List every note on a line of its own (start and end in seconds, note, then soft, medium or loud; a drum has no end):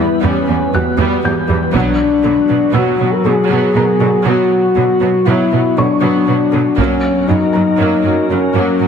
0.00 1.74 E3 medium
0.00 1.74 G3 medium
0.00 1.70 B3 medium
0.00 0.23 E4 medium
0.00 1.70 B4 medium
0.22 0.32 E2 medium
0.22 0.46 G3 soft
0.22 0.46 B3 medium
0.22 0.73 C#4 medium
0.48 0.57 E2 soft
0.48 0.56 G3 soft
0.48 0.56 B3 soft
0.72 0.82 E2 soft
0.72 0.82 E3 soft
0.72 0.82 G3 soft
0.72 1.49 B3 medium
0.72 2.21 F#4 soft
0.72 2.21 F#6 soft
0.98 1.06 E2 medium
0.98 1.22 G3 medium
0.98 1.22 B3 medium
1.24 1.32 E2 soft
1.24 1.32 G3 soft
1.24 1.32 B3 soft
1.24 2.72 G6 soft
1.49 1.57 E2 soft
1.49 1.57 E3 soft
1.49 1.57 G3 soft
1.73 1.83 B2 medium
1.73 1.97 F#3 medium
1.73 6.77 F#3 medium
1.73 6.74 B3 medium
1.73 1.97 B3 soft
1.73 2.71 D4 medium
1.73 6.77 F#4 medium
1.73 taiko soft
2.23 2.33 B2 soft
2.23 2.32 D3 soft
2.23 2.31 F#3 soft
2.49 2.57 B2 soft
2.49 2.58 F#3 soft
2.49 2.58 B3 soft
2.74 2.83 B2 medium
2.74 2.98 F#3 soft
2.74 2.98 B3 soft
2.74 3.12 F#4 medium
2.74 4.22 E6 soft
3.00 3.08 B2 soft
3.00 3.08 F#3 soft
3.00 3.08 B3 soft
3.12 3.25 A#4 medium
3.25 3.33 B2 soft
3.25 3.33 D3 soft
3.25 3.33 F#3 soft
3.25 4.26 G#4 medium
3.50 3.58 B2 medium
3.50 3.74 F#3 medium
3.50 3.74 B3 soft
3.75 3.83 B2 soft
3.75 3.83 F#3 soft
3.75 3.83 B3 soft
3.75 5.24 A#4 soft
3.75 5.23 A#5 soft
4.00 4.08 B2 soft
4.00 4.09 D3 soft
4.00 4.08 F#3 soft
4.25 4.33 B2 medium
4.25 4.50 F#3 medium
4.25 4.50 B3 soft
4.25 5.25 F#4 medium
4.76 4.84 B2 soft
4.76 4.84 D3 soft
4.76 4.84 F#3 soft
5.01 5.09 B2 soft
5.01 5.10 F#3 soft
5.01 5.10 B3 soft
5.26 5.34 B2 medium
5.26 5.50 F#3 soft
5.26 5.50 B3 soft
5.26 5.77 E4 medium
5.52 5.60 B2 soft
5.52 5.60 F#3 soft
5.52 5.60 B3 soft
5.77 5.86 B2 soft
5.77 5.85 D3 soft
5.77 5.86 F#3 soft
5.77 6.78 D4 medium
5.77 7.25 C#5 soft
5.77 7.25 C#6 soft
6.02 6.10 B2 medium
6.02 6.26 F#3 soft
6.02 6.26 B3 medium
6.27 6.36 B2 soft
6.27 6.36 F#3 soft
6.27 6.35 B3 soft
6.52 6.62 B2 soft
6.52 6.60 D3 soft
6.52 6.61 F#3 soft
6.78 6.86 F#2 soft
6.78 7.02 F#3 soft
6.78 8.88 F#3 medium
6.78 7.02 A#3 soft
6.78 7.29 C#4 medium
6.78 8.88 C#4 medium
6.78 8.88 F#4 medium
6.78 8.88 A#4 medium
6.78 taiko soft
7.28 7.37 F#2 soft
7.28 7.37 C#3 soft
7.28 7.37 F#3 soft
7.28 8.29 D#4 medium
7.53 7.63 F#2 soft
7.53 7.63 F#3 soft
7.53 7.63 A#3 soft
7.53 8.88 A#5 soft
7.79 7.87 F#2 soft
7.79 8.03 F#3 soft
7.79 8.03 A#3 soft
8.05 8.13 F#2 soft
8.05 8.13 F#3 soft
8.05 8.13 A#3 soft
8.29 8.38 F#2 soft
8.29 8.39 C#3 soft
8.29 8.39 F#3 soft
8.29 8.88 C#4 medium
8.54 8.62 F#2 soft
8.54 8.79 F#3 soft
8.54 8.79 A#3 soft
8.80 8.88 F#2 soft
8.80 8.88 F#3 soft
8.80 8.88 A#3 soft